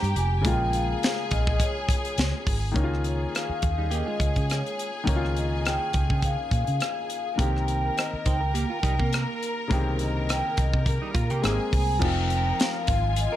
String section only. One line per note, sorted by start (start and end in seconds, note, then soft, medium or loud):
0.00 0.42 G4 medium
0.00 0.42 G5 medium
0.44 2.72 G#4 medium
0.44 2.72 G#5 medium
2.76 7.35 G#4 medium
2.76 7.35 G#5 medium
7.38 11.40 A#4 medium
7.38 11.39 A#5 medium
11.44 12.01 G#4 medium
11.44 12.01 G#5 medium
12.02 12.87 A#4 medium
12.02 12.87 A#5 medium
12.89 13.36 F4 medium
12.89 13.36 G#5 medium